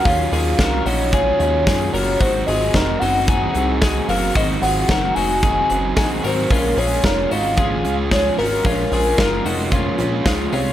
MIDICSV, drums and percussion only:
0, 0, Header, 1, 2, 480
1, 0, Start_track
1, 0, Tempo, 536673
1, 47, Time_signature, 4, 2, 24, 8
1, 9596, End_track
2, 0, Start_track
2, 0, Title_t, "Drums"
2, 48, Note_on_c, 9, 36, 109
2, 48, Note_on_c, 9, 44, 64
2, 48, Note_on_c, 9, 46, 75
2, 137, Note_off_c, 9, 44, 0
2, 137, Note_off_c, 9, 46, 0
2, 138, Note_off_c, 9, 36, 0
2, 291, Note_on_c, 9, 44, 55
2, 296, Note_on_c, 9, 46, 66
2, 380, Note_off_c, 9, 44, 0
2, 385, Note_off_c, 9, 46, 0
2, 526, Note_on_c, 9, 36, 102
2, 526, Note_on_c, 9, 46, 70
2, 527, Note_on_c, 9, 44, 62
2, 528, Note_on_c, 9, 38, 106
2, 615, Note_off_c, 9, 46, 0
2, 616, Note_off_c, 9, 36, 0
2, 617, Note_off_c, 9, 44, 0
2, 618, Note_off_c, 9, 38, 0
2, 768, Note_on_c, 9, 44, 64
2, 772, Note_on_c, 9, 46, 65
2, 857, Note_off_c, 9, 44, 0
2, 861, Note_off_c, 9, 46, 0
2, 1007, Note_on_c, 9, 46, 78
2, 1010, Note_on_c, 9, 36, 99
2, 1010, Note_on_c, 9, 44, 69
2, 1096, Note_off_c, 9, 46, 0
2, 1099, Note_off_c, 9, 36, 0
2, 1099, Note_off_c, 9, 44, 0
2, 1251, Note_on_c, 9, 46, 71
2, 1253, Note_on_c, 9, 44, 55
2, 1340, Note_off_c, 9, 46, 0
2, 1342, Note_off_c, 9, 44, 0
2, 1493, Note_on_c, 9, 36, 127
2, 1493, Note_on_c, 9, 44, 68
2, 1494, Note_on_c, 9, 38, 124
2, 1497, Note_on_c, 9, 46, 70
2, 1582, Note_off_c, 9, 36, 0
2, 1583, Note_off_c, 9, 38, 0
2, 1583, Note_off_c, 9, 44, 0
2, 1586, Note_off_c, 9, 46, 0
2, 1737, Note_on_c, 9, 44, 62
2, 1740, Note_on_c, 9, 46, 67
2, 1827, Note_off_c, 9, 44, 0
2, 1829, Note_off_c, 9, 46, 0
2, 1971, Note_on_c, 9, 44, 71
2, 1971, Note_on_c, 9, 46, 76
2, 1973, Note_on_c, 9, 36, 108
2, 2060, Note_off_c, 9, 44, 0
2, 2061, Note_off_c, 9, 46, 0
2, 2062, Note_off_c, 9, 36, 0
2, 2211, Note_on_c, 9, 44, 64
2, 2216, Note_on_c, 9, 46, 74
2, 2300, Note_off_c, 9, 44, 0
2, 2306, Note_off_c, 9, 46, 0
2, 2451, Note_on_c, 9, 36, 91
2, 2451, Note_on_c, 9, 46, 62
2, 2452, Note_on_c, 9, 44, 61
2, 2454, Note_on_c, 9, 38, 106
2, 2540, Note_off_c, 9, 46, 0
2, 2541, Note_off_c, 9, 36, 0
2, 2542, Note_off_c, 9, 44, 0
2, 2543, Note_off_c, 9, 38, 0
2, 2694, Note_on_c, 9, 44, 55
2, 2698, Note_on_c, 9, 46, 62
2, 2783, Note_off_c, 9, 44, 0
2, 2787, Note_off_c, 9, 46, 0
2, 2930, Note_on_c, 9, 46, 64
2, 2933, Note_on_c, 9, 44, 70
2, 2934, Note_on_c, 9, 36, 114
2, 3020, Note_off_c, 9, 46, 0
2, 3022, Note_off_c, 9, 44, 0
2, 3023, Note_off_c, 9, 36, 0
2, 3171, Note_on_c, 9, 46, 72
2, 3173, Note_on_c, 9, 44, 67
2, 3260, Note_off_c, 9, 46, 0
2, 3262, Note_off_c, 9, 44, 0
2, 3413, Note_on_c, 9, 38, 112
2, 3413, Note_on_c, 9, 44, 74
2, 3416, Note_on_c, 9, 36, 115
2, 3416, Note_on_c, 9, 46, 75
2, 3502, Note_off_c, 9, 44, 0
2, 3503, Note_off_c, 9, 38, 0
2, 3505, Note_off_c, 9, 46, 0
2, 3506, Note_off_c, 9, 36, 0
2, 3655, Note_on_c, 9, 44, 64
2, 3658, Note_on_c, 9, 46, 74
2, 3744, Note_off_c, 9, 44, 0
2, 3747, Note_off_c, 9, 46, 0
2, 3893, Note_on_c, 9, 44, 58
2, 3893, Note_on_c, 9, 46, 74
2, 3895, Note_on_c, 9, 36, 109
2, 3982, Note_off_c, 9, 44, 0
2, 3982, Note_off_c, 9, 46, 0
2, 3985, Note_off_c, 9, 36, 0
2, 4134, Note_on_c, 9, 44, 63
2, 4139, Note_on_c, 9, 46, 79
2, 4223, Note_off_c, 9, 44, 0
2, 4228, Note_off_c, 9, 46, 0
2, 4371, Note_on_c, 9, 46, 72
2, 4373, Note_on_c, 9, 36, 99
2, 4373, Note_on_c, 9, 44, 59
2, 4374, Note_on_c, 9, 38, 108
2, 4460, Note_off_c, 9, 46, 0
2, 4462, Note_off_c, 9, 36, 0
2, 4462, Note_off_c, 9, 44, 0
2, 4463, Note_off_c, 9, 38, 0
2, 4612, Note_on_c, 9, 44, 63
2, 4617, Note_on_c, 9, 46, 60
2, 4702, Note_off_c, 9, 44, 0
2, 4706, Note_off_c, 9, 46, 0
2, 4851, Note_on_c, 9, 46, 62
2, 4854, Note_on_c, 9, 44, 68
2, 4856, Note_on_c, 9, 36, 109
2, 4941, Note_off_c, 9, 46, 0
2, 4943, Note_off_c, 9, 44, 0
2, 4945, Note_off_c, 9, 36, 0
2, 5097, Note_on_c, 9, 46, 64
2, 5098, Note_on_c, 9, 44, 53
2, 5186, Note_off_c, 9, 46, 0
2, 5188, Note_off_c, 9, 44, 0
2, 5336, Note_on_c, 9, 38, 121
2, 5336, Note_on_c, 9, 44, 77
2, 5338, Note_on_c, 9, 36, 119
2, 5339, Note_on_c, 9, 46, 84
2, 5425, Note_off_c, 9, 44, 0
2, 5426, Note_off_c, 9, 38, 0
2, 5428, Note_off_c, 9, 36, 0
2, 5429, Note_off_c, 9, 46, 0
2, 5581, Note_on_c, 9, 44, 59
2, 5584, Note_on_c, 9, 46, 68
2, 5670, Note_off_c, 9, 44, 0
2, 5673, Note_off_c, 9, 46, 0
2, 5818, Note_on_c, 9, 36, 105
2, 5821, Note_on_c, 9, 44, 68
2, 5821, Note_on_c, 9, 46, 79
2, 5908, Note_off_c, 9, 36, 0
2, 5910, Note_off_c, 9, 44, 0
2, 5911, Note_off_c, 9, 46, 0
2, 6059, Note_on_c, 9, 44, 71
2, 6064, Note_on_c, 9, 46, 75
2, 6148, Note_off_c, 9, 44, 0
2, 6153, Note_off_c, 9, 46, 0
2, 6295, Note_on_c, 9, 36, 105
2, 6300, Note_on_c, 9, 38, 98
2, 6384, Note_off_c, 9, 36, 0
2, 6390, Note_off_c, 9, 38, 0
2, 6537, Note_on_c, 9, 44, 63
2, 6542, Note_on_c, 9, 46, 61
2, 6627, Note_off_c, 9, 44, 0
2, 6631, Note_off_c, 9, 46, 0
2, 6770, Note_on_c, 9, 46, 71
2, 6773, Note_on_c, 9, 44, 61
2, 6776, Note_on_c, 9, 36, 115
2, 6860, Note_off_c, 9, 46, 0
2, 6862, Note_off_c, 9, 44, 0
2, 6865, Note_off_c, 9, 36, 0
2, 7018, Note_on_c, 9, 46, 72
2, 7020, Note_on_c, 9, 44, 63
2, 7107, Note_off_c, 9, 46, 0
2, 7109, Note_off_c, 9, 44, 0
2, 7257, Note_on_c, 9, 38, 111
2, 7257, Note_on_c, 9, 44, 76
2, 7258, Note_on_c, 9, 36, 115
2, 7260, Note_on_c, 9, 46, 78
2, 7346, Note_off_c, 9, 44, 0
2, 7347, Note_off_c, 9, 36, 0
2, 7347, Note_off_c, 9, 38, 0
2, 7349, Note_off_c, 9, 46, 0
2, 7498, Note_on_c, 9, 44, 60
2, 7501, Note_on_c, 9, 46, 71
2, 7588, Note_off_c, 9, 44, 0
2, 7590, Note_off_c, 9, 46, 0
2, 7735, Note_on_c, 9, 36, 114
2, 7735, Note_on_c, 9, 44, 61
2, 7736, Note_on_c, 9, 46, 78
2, 7824, Note_off_c, 9, 36, 0
2, 7825, Note_off_c, 9, 44, 0
2, 7825, Note_off_c, 9, 46, 0
2, 7974, Note_on_c, 9, 44, 60
2, 7979, Note_on_c, 9, 46, 70
2, 8064, Note_off_c, 9, 44, 0
2, 8069, Note_off_c, 9, 46, 0
2, 8213, Note_on_c, 9, 36, 106
2, 8214, Note_on_c, 9, 38, 105
2, 8302, Note_off_c, 9, 36, 0
2, 8304, Note_off_c, 9, 38, 0
2, 8455, Note_on_c, 9, 44, 62
2, 8459, Note_on_c, 9, 46, 62
2, 8544, Note_off_c, 9, 44, 0
2, 8548, Note_off_c, 9, 46, 0
2, 8690, Note_on_c, 9, 46, 74
2, 8692, Note_on_c, 9, 44, 61
2, 8693, Note_on_c, 9, 36, 95
2, 8779, Note_off_c, 9, 46, 0
2, 8782, Note_off_c, 9, 36, 0
2, 8782, Note_off_c, 9, 44, 0
2, 8929, Note_on_c, 9, 46, 73
2, 8931, Note_on_c, 9, 44, 59
2, 9019, Note_off_c, 9, 46, 0
2, 9021, Note_off_c, 9, 44, 0
2, 9173, Note_on_c, 9, 38, 127
2, 9173, Note_on_c, 9, 44, 63
2, 9174, Note_on_c, 9, 36, 127
2, 9176, Note_on_c, 9, 46, 70
2, 9262, Note_off_c, 9, 44, 0
2, 9263, Note_off_c, 9, 36, 0
2, 9263, Note_off_c, 9, 38, 0
2, 9266, Note_off_c, 9, 46, 0
2, 9411, Note_on_c, 9, 44, 58
2, 9413, Note_on_c, 9, 46, 66
2, 9500, Note_off_c, 9, 44, 0
2, 9503, Note_off_c, 9, 46, 0
2, 9596, End_track
0, 0, End_of_file